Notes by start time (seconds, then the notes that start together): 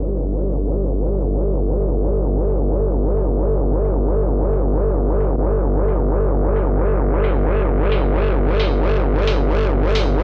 Already playing: G1
0.46 open hi-hat
1.14 open hi-hat
1.82 open hi-hat
2.49 open hi-hat
3.17 open hi-hat
3.85 open hi-hat
4.53 open hi-hat
5.20 open hi-hat
5.37 G1
5.88 open hi-hat
6.56 open hi-hat
7.24 open hi-hat
7.92 open hi-hat
8.60 open hi-hat
9.27 open hi-hat
9.95 open hi-hat